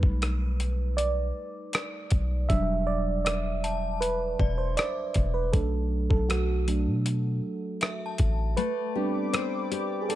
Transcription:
Already playing: fm electric piano G3 A3 D#4 B4, downlifter
0.03 808-style bass B1, kick
0.22 cross-stick, closed hi-hat
0.60 closed hi-hat
0.97 fm electric piano D5, closed hi-hat
1.73 cross-stick, closed hi-hat
2.11 808-style bass B1, kick, closed hi-hat
2.49 808-style bass E1, fm electric piano F#3 G3 D4 E5, kick, closed hi-hat
2.87 fm electric piano D5
3.25 fm electric piano D5, cross-stick, closed hi-hat
3.64 synth bell A5, closed hi-hat
4.01 fm electric piano B4, closed hi-hat
4.39 808-style bass E1, synth bell D5, kick
4.58 fm electric piano C5
4.77 fm electric piano D5, cross-stick, closed hi-hat
5.14 808-style bass E1, kick, closed hi-hat
5.34 fm electric piano B4
5.53 808-style bass B1, fm electric piano F#3 A3 D4 A4, kick, closed hi-hat
6.10 808-style bass B1, fm electric piano A4, kick
6.29 fm electric piano F#4, cross-stick, closed hi-hat
6.68 fm electric piano F#3 A3 D4, closed hi-hat
6.87 808-style bass B2
7.06 closed hi-hat
7.81 synth bell E5, cross-stick, closed hi-hat
8.06 synth bell A5
8.18 808-style bass A1, kick, closed hi-hat
8.57 nylon-string guitar A3, fm electric piano B4, analog synth pad D5 G5 B5 D6, closed hi-hat
8.95 fm electric piano G3 B3 C4 D4, nylon-string guitar G4
9.33 nylon-string guitar C5, cross-stick, closed hi-hat
9.71 nylon-string guitar G4, closed hi-hat
10.02 fm electric piano G#4
10.09 nylon-string guitar D4, fm electric piano A4, closed hi-hat

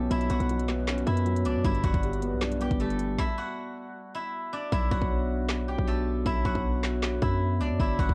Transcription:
Already playing: felt piano B2 F#3 B3 C#4, guzheng A3 D4 E4 G4 A4 D5 E5 G5, glass harmonica B3 F#4 C#5
0.11 808-style bass B1, felt piano B2, guzheng E4 E5, closed hi-hat
0.21 closed hi-hat
0.30 808-style bass B1, guzheng F#4 F#5, closed hi-hat
0.40 808-style bass B1, closed hi-hat
0.49 felt piano F#3, closed hi-hat
0.59 closed hi-hat
0.69 felt piano B3, snare, clap, closed hi-hat
0.88 felt piano C#4, snare, clap, closed hi-hat
0.98 closed hi-hat
1.07 808-style bass F#2, felt piano B3, guzheng E4 E5, closed hi-hat
1.17 closed hi-hat
1.26 felt piano F#3, closed hi-hat
1.36 closed hi-hat
1.45 808-style bass C#2, guzheng D4 D5, closed hi-hat
1.56 808-style bass F#2
1.65 808-style bass G1, felt piano G2, glass harmonica G3 D5, guzheng E4 E5, kick, closed hi-hat
1.75 closed hi-hat
1.84 808-style bass G1, guzheng F#4 F#5, kick, closed hi-hat
1.94 808-style bass G1, kick, closed hi-hat
2.03 felt piano G3, closed hi-hat
2.13 closed hi-hat
2.22 felt piano B3, closed hi-hat
2.32 808-style bass B1
2.41 felt piano D4, snare, clap, closed hi-hat
2.52 closed hi-hat
2.60 felt piano B3, guzheng G4 G5, closed hi-hat
2.71 808-style bass G1, kick, closed hi-hat
2.79 felt piano G3, guzheng A3 A4, closed hi-hat
2.90 closed hi-hat
2.99 closed hi-hat
3.18 guzheng E4 E5, kick, snare
3.38 guzheng F#4 F#5
4.15 guzheng E4 E5
4.53 guzheng D4 D5
4.72 808-style bass B1, glass harmonica B3 D4 F#4 C#5, guzheng E4 E5, kick
4.91 808-style bass B1, guzheng F#4 F#5, kick
5.02 808-style bass B1, kick
5.49 snare, clap
5.68 guzheng G4 G5
5.79 808-style bass B1, kick
5.88 guzheng A3 A4
6.26 808-style bass B1, guzheng E4 E5, kick
6.45 808-style bass B1, guzheng F#4 F#5, kick
6.55 808-style bass B1, kick
6.84 snare, clap
7.03 snare, clap
7.22 808-style bass F#2, guzheng E4 E5, kick
7.61 808-style bass C#2, guzheng D4 D5
7.71 808-style bass F#2
7.80 808-style bass G1, glass harmonica G3 D5, guzheng E4 E5, kick
7.99 808-style bass G1, guzheng F#4 F#5, kick
8.09 808-style bass G1, kick

